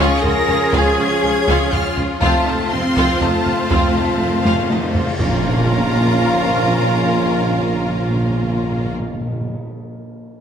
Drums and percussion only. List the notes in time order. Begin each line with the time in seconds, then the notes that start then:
0.24 taiko low
0.48 taiko low
0.73 taiko
1.48 taiko
1.73 taiko low
1.97 taiko low
2.22 taiko
2.96 taiko
3.21 taiko low
3.46 taiko low
3.71 taiko
4.45 taiko high
4.70 taiko high
4.95 taiko low
5.19 taiko low, tam-tam